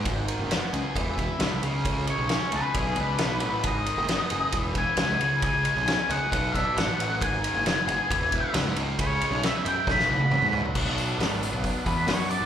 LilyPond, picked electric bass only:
\new Staff \with { instrumentName = "Picked electric bass" } { \clef bass \time 4/4 \key b \mixolydian \tempo 4 = 135 gis,,8 r16 fis,,8 r16 cis,16 r16 e,,8 e,,16 r16 cis,16 c,16 cis,8~ | cis,8. b,,8 r16 cis,16 r16 b,,8 cis,8 b,,8 a,,8 | gis,,8 r16 fis,,8 r16 fis,,16 r16 e,,8 e,,16 r16 cis,16 cis,16 cis,8~ | cis,8. b,,8 r16 cis,16 r16 b,,8 b,,16 r16 gis,,16 a,,8. |
gis,,8 r16 fis,,8 r16 fis,,16 r16 e,,8 e,,16 r16 cis,16 gis,16 cis,8~ | cis,8. b,,8 r16 fis,16 r16 b,,8 b,,16 r16 gis,,16 gis,8 r16 | b,,16 b,,8. gis,,8. b,,8 r16 e,8 fis,8. gis,,16 | }